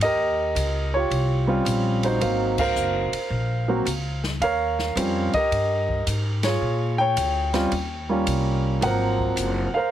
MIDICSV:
0, 0, Header, 1, 5, 480
1, 0, Start_track
1, 0, Tempo, 550459
1, 14, Time_signature, 4, 2, 24, 8
1, 8642, End_track
2, 0, Start_track
2, 0, Title_t, "Grand piano"
2, 0, Program_c, 0, 0
2, 21, Note_on_c, 0, 75, 103
2, 35, Note_on_c, 0, 67, 73
2, 38, Note_on_c, 0, 70, 76
2, 782, Note_off_c, 0, 75, 0
2, 820, Note_on_c, 0, 73, 89
2, 830, Note_off_c, 0, 67, 0
2, 839, Note_on_c, 0, 65, 62
2, 843, Note_on_c, 0, 67, 63
2, 949, Note_off_c, 0, 70, 0
2, 1283, Note_on_c, 0, 55, 69
2, 1286, Note_off_c, 0, 65, 0
2, 1292, Note_on_c, 0, 60, 63
2, 1292, Note_on_c, 0, 61, 56
2, 1299, Note_on_c, 0, 65, 78
2, 1420, Note_off_c, 0, 73, 0
2, 1752, Note_off_c, 0, 67, 0
2, 1782, Note_on_c, 0, 72, 78
2, 1794, Note_on_c, 0, 63, 65
2, 1797, Note_on_c, 0, 66, 60
2, 1895, Note_off_c, 0, 55, 0
2, 1899, Note_off_c, 0, 60, 0
2, 1899, Note_off_c, 0, 61, 0
2, 1902, Note_off_c, 0, 65, 0
2, 1924, Note_on_c, 0, 54, 61
2, 1928, Note_on_c, 0, 58, 59
2, 1934, Note_on_c, 0, 60, 58
2, 1937, Note_on_c, 0, 77, 73
2, 2224, Note_off_c, 0, 72, 0
2, 2249, Note_off_c, 0, 77, 0
2, 2262, Note_on_c, 0, 77, 107
2, 2274, Note_on_c, 0, 70, 74
2, 2274, Note_on_c, 0, 72, 81
2, 2664, Note_off_c, 0, 54, 0
2, 2666, Note_off_c, 0, 58, 0
2, 2669, Note_off_c, 0, 60, 0
2, 2708, Note_off_c, 0, 63, 0
2, 2709, Note_off_c, 0, 66, 0
2, 3210, Note_on_c, 0, 54, 63
2, 3213, Note_on_c, 0, 58, 62
2, 3220, Note_on_c, 0, 60, 62
2, 3225, Note_on_c, 0, 66, 68
2, 3354, Note_off_c, 0, 54, 0
2, 3355, Note_off_c, 0, 58, 0
2, 3359, Note_off_c, 0, 60, 0
2, 3361, Note_off_c, 0, 66, 0
2, 3662, Note_off_c, 0, 77, 0
2, 3668, Note_off_c, 0, 72, 0
2, 3669, Note_off_c, 0, 70, 0
2, 3851, Note_on_c, 0, 77, 107
2, 3865, Note_on_c, 0, 73, 71
2, 3868, Note_on_c, 0, 70, 69
2, 4327, Note_on_c, 0, 55, 61
2, 4331, Note_on_c, 0, 60, 57
2, 4336, Note_on_c, 0, 61, 55
2, 4344, Note_on_c, 0, 65, 68
2, 4619, Note_off_c, 0, 55, 0
2, 4621, Note_off_c, 0, 60, 0
2, 4623, Note_off_c, 0, 61, 0
2, 4627, Note_off_c, 0, 65, 0
2, 4658, Note_on_c, 0, 75, 106
2, 4664, Note_off_c, 0, 70, 0
2, 4677, Note_off_c, 0, 77, 0
2, 4677, Note_on_c, 0, 70, 64
2, 4678, Note_on_c, 0, 67, 66
2, 4784, Note_off_c, 0, 73, 0
2, 5260, Note_off_c, 0, 75, 0
2, 5591, Note_off_c, 0, 70, 0
2, 5592, Note_off_c, 0, 67, 0
2, 5617, Note_on_c, 0, 73, 85
2, 5637, Note_on_c, 0, 68, 61
2, 5642, Note_on_c, 0, 65, 64
2, 6063, Note_off_c, 0, 73, 0
2, 6089, Note_on_c, 0, 79, 105
2, 6109, Note_on_c, 0, 73, 79
2, 6552, Note_off_c, 0, 68, 0
2, 6554, Note_off_c, 0, 65, 0
2, 6570, Note_on_c, 0, 55, 76
2, 6572, Note_on_c, 0, 60, 65
2, 6578, Note_on_c, 0, 61, 63
2, 6582, Note_on_c, 0, 65, 81
2, 6716, Note_off_c, 0, 55, 0
2, 6717, Note_off_c, 0, 60, 0
2, 6720, Note_off_c, 0, 61, 0
2, 6722, Note_off_c, 0, 65, 0
2, 7056, Note_on_c, 0, 55, 66
2, 7062, Note_on_c, 0, 58, 57
2, 7065, Note_on_c, 0, 61, 57
2, 7070, Note_on_c, 0, 65, 68
2, 7498, Note_off_c, 0, 79, 0
2, 7509, Note_off_c, 0, 73, 0
2, 7664, Note_off_c, 0, 55, 0
2, 7667, Note_off_c, 0, 58, 0
2, 7668, Note_off_c, 0, 61, 0
2, 7670, Note_off_c, 0, 65, 0
2, 7684, Note_on_c, 0, 54, 62
2, 7690, Note_on_c, 0, 58, 57
2, 7696, Note_on_c, 0, 60, 56
2, 7700, Note_on_c, 0, 53, 69
2, 7702, Note_on_c, 0, 78, 97
2, 7720, Note_on_c, 0, 70, 72
2, 7724, Note_on_c, 0, 72, 72
2, 8427, Note_off_c, 0, 54, 0
2, 8430, Note_off_c, 0, 58, 0
2, 8433, Note_off_c, 0, 60, 0
2, 8435, Note_off_c, 0, 53, 0
2, 8494, Note_on_c, 0, 77, 87
2, 8500, Note_off_c, 0, 70, 0
2, 8500, Note_off_c, 0, 72, 0
2, 8513, Note_on_c, 0, 70, 66
2, 8513, Note_on_c, 0, 72, 67
2, 8524, Note_off_c, 0, 78, 0
2, 8642, Note_off_c, 0, 70, 0
2, 8642, Note_off_c, 0, 72, 0
2, 8642, Note_off_c, 0, 77, 0
2, 8642, End_track
3, 0, Start_track
3, 0, Title_t, "Upright bass"
3, 0, Program_c, 1, 32
3, 2, Note_on_c, 1, 39, 81
3, 473, Note_off_c, 1, 39, 0
3, 478, Note_on_c, 1, 37, 83
3, 950, Note_off_c, 1, 37, 0
3, 961, Note_on_c, 1, 36, 83
3, 1431, Note_off_c, 1, 36, 0
3, 1439, Note_on_c, 1, 34, 91
3, 1910, Note_off_c, 1, 34, 0
3, 1923, Note_on_c, 1, 32, 83
3, 2392, Note_off_c, 1, 32, 0
3, 2403, Note_on_c, 1, 30, 82
3, 2705, Note_off_c, 1, 30, 0
3, 2879, Note_on_c, 1, 34, 87
3, 3350, Note_off_c, 1, 34, 0
3, 3360, Note_on_c, 1, 37, 86
3, 3831, Note_off_c, 1, 37, 0
3, 3838, Note_on_c, 1, 39, 78
3, 4310, Note_off_c, 1, 39, 0
3, 4320, Note_on_c, 1, 41, 91
3, 4625, Note_off_c, 1, 41, 0
3, 4807, Note_on_c, 1, 43, 83
3, 5276, Note_off_c, 1, 43, 0
3, 5289, Note_on_c, 1, 44, 88
3, 5757, Note_off_c, 1, 44, 0
3, 5766, Note_on_c, 1, 46, 80
3, 6236, Note_off_c, 1, 46, 0
3, 6248, Note_on_c, 1, 38, 89
3, 6717, Note_off_c, 1, 38, 0
3, 6726, Note_on_c, 1, 39, 83
3, 7196, Note_off_c, 1, 39, 0
3, 7204, Note_on_c, 1, 36, 84
3, 7675, Note_off_c, 1, 36, 0
3, 7681, Note_on_c, 1, 32, 81
3, 8154, Note_off_c, 1, 32, 0
3, 8161, Note_on_c, 1, 30, 84
3, 8467, Note_off_c, 1, 30, 0
3, 8642, End_track
4, 0, Start_track
4, 0, Title_t, "Muted upright bass strokes"
4, 2720, Note_on_c, 9, 29, 41
4, 2808, Note_off_c, 9, 29, 0
4, 4650, Note_on_c, 9, 29, 41
4, 4738, Note_off_c, 9, 29, 0
4, 8491, Note_on_c, 9, 29, 42
4, 8578, Note_off_c, 9, 29, 0
4, 8642, End_track
5, 0, Start_track
5, 0, Title_t, "Drums"
5, 10, Note_on_c, 9, 51, 62
5, 97, Note_off_c, 9, 51, 0
5, 490, Note_on_c, 9, 44, 57
5, 490, Note_on_c, 9, 51, 73
5, 577, Note_off_c, 9, 44, 0
5, 577, Note_off_c, 9, 51, 0
5, 971, Note_on_c, 9, 51, 55
5, 1059, Note_off_c, 9, 51, 0
5, 1450, Note_on_c, 9, 44, 54
5, 1450, Note_on_c, 9, 51, 70
5, 1537, Note_off_c, 9, 44, 0
5, 1537, Note_off_c, 9, 51, 0
5, 1772, Note_on_c, 9, 51, 52
5, 1859, Note_off_c, 9, 51, 0
5, 1930, Note_on_c, 9, 51, 62
5, 2017, Note_off_c, 9, 51, 0
5, 2250, Note_on_c, 9, 36, 84
5, 2250, Note_on_c, 9, 49, 77
5, 2337, Note_off_c, 9, 36, 0
5, 2337, Note_off_c, 9, 49, 0
5, 2407, Note_on_c, 9, 44, 60
5, 2495, Note_off_c, 9, 44, 0
5, 2730, Note_on_c, 9, 51, 66
5, 2817, Note_off_c, 9, 51, 0
5, 3370, Note_on_c, 9, 44, 51
5, 3370, Note_on_c, 9, 51, 71
5, 3457, Note_off_c, 9, 44, 0
5, 3457, Note_off_c, 9, 51, 0
5, 3694, Note_on_c, 9, 38, 48
5, 3781, Note_off_c, 9, 38, 0
5, 3852, Note_on_c, 9, 51, 55
5, 3939, Note_off_c, 9, 51, 0
5, 4176, Note_on_c, 9, 38, 40
5, 4263, Note_off_c, 9, 38, 0
5, 4334, Note_on_c, 9, 44, 49
5, 4334, Note_on_c, 9, 51, 75
5, 4421, Note_off_c, 9, 44, 0
5, 4421, Note_off_c, 9, 51, 0
5, 4652, Note_on_c, 9, 51, 44
5, 4653, Note_on_c, 9, 36, 55
5, 4739, Note_off_c, 9, 51, 0
5, 4741, Note_off_c, 9, 36, 0
5, 4815, Note_on_c, 9, 51, 54
5, 4902, Note_off_c, 9, 51, 0
5, 5135, Note_on_c, 9, 36, 50
5, 5222, Note_off_c, 9, 36, 0
5, 5292, Note_on_c, 9, 44, 64
5, 5292, Note_on_c, 9, 51, 66
5, 5380, Note_off_c, 9, 44, 0
5, 5380, Note_off_c, 9, 51, 0
5, 5608, Note_on_c, 9, 51, 64
5, 5609, Note_on_c, 9, 38, 83
5, 5695, Note_off_c, 9, 51, 0
5, 5697, Note_off_c, 9, 38, 0
5, 6250, Note_on_c, 9, 44, 57
5, 6250, Note_on_c, 9, 51, 74
5, 6337, Note_off_c, 9, 44, 0
5, 6337, Note_off_c, 9, 51, 0
5, 6573, Note_on_c, 9, 51, 44
5, 6574, Note_on_c, 9, 38, 53
5, 6660, Note_off_c, 9, 51, 0
5, 6662, Note_off_c, 9, 38, 0
5, 6729, Note_on_c, 9, 51, 60
5, 6816, Note_off_c, 9, 51, 0
5, 7209, Note_on_c, 9, 44, 50
5, 7209, Note_on_c, 9, 51, 75
5, 7296, Note_off_c, 9, 44, 0
5, 7296, Note_off_c, 9, 51, 0
5, 7693, Note_on_c, 9, 51, 64
5, 7781, Note_off_c, 9, 51, 0
5, 8015, Note_on_c, 9, 36, 44
5, 8102, Note_off_c, 9, 36, 0
5, 8170, Note_on_c, 9, 44, 68
5, 8170, Note_on_c, 9, 51, 64
5, 8257, Note_off_c, 9, 44, 0
5, 8257, Note_off_c, 9, 51, 0
5, 8642, End_track
0, 0, End_of_file